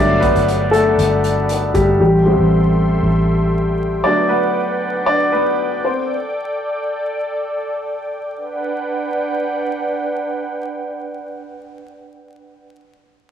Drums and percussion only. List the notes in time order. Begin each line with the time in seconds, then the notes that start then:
0.22 kick, closed hi-hat
0.36 closed hi-hat
0.48 closed hi-hat
0.73 closed hi-hat
0.99 closed hi-hat
1.24 closed hi-hat
1.49 closed hi-hat
1.75 kick, closed hi-hat